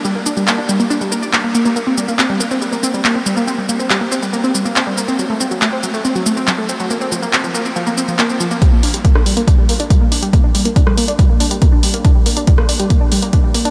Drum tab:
HH |----------------|----------------|----------------|----------------|
SH |x-xxx-xxxxxxx-xx|x-xxx-xxxxxxx-xx|x-xxx-xxxxxxx-xx|x-xxx-xxxxxxx-xx|
CP |----x-------x---|----x-------x---|----x-------x---|----x-------x---|
SD |----------------|----------------|----------------|----------------|
BD |----------------|----------------|----------------|----------------|

HH |----------------|x-oxx-oxx-oxx-ox|x-oxx-oxx-oxx-ox|x-oxx-oxx-oxx-ox|
SH |xxxxxxxxxxxxxxxx|----------------|----------------|----------------|
CP |----x-------x---|----------------|----------------|----------------|
SD |----------------|-----r----------|-----r----------|-----r----------|
BD |----------------|o---o---o---o---|o---o---o---o---|o---o---o---o---|